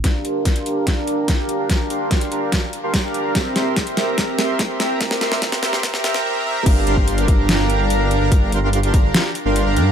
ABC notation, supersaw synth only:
X:1
M:4/4
L:1/16
Q:1/4=145
K:Gdor
V:1 name="Supersaw synth"
[DGBfb]2 [DGBfc']4 [DGBfb]3 [DGBfb]6 [DGBfb]- | [DGBfb]2 [DGBfc']4 [DGBfb]2 z3 [DGBfc']2 [DGBfb] [DGBfb]2 | [CGBeb]2 [CGBec']4 [CGBeb]2 [CGBeb]2 [CGBec']4 [CGBeb]2 | [CGBeb]2 [CGBec']2 [CGBeb]2 [CGBec']2 [CGBeb]2 [CGBeb]2 [CGBeb]2 [CGBeb]2 |
[DGBfb]2 [DGBfc']4 [DGBfb]3 [DGBfb]6 [DGBfb]- | [DGBfb]2 [DGBfc']4 [DGBfb]2 z3 [DGBfc']2 [DGBfb] [DGBfb]2 |]